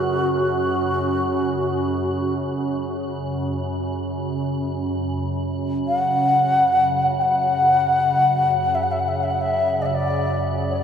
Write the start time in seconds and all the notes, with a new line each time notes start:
Already playing: F#2 C#3 F#4
5.00 F#2 C#3
5.87 F#5
7.18 F#5 G5
8.74 E5
8.83 F#5
8.91 E5
8.99 F#5
9.08 E5
9.16 F#5
9.23 E5
9.30 F#5
9.41 E5
9.82 D5 E5
9.94 D5
10.69 C#5
10.77 D5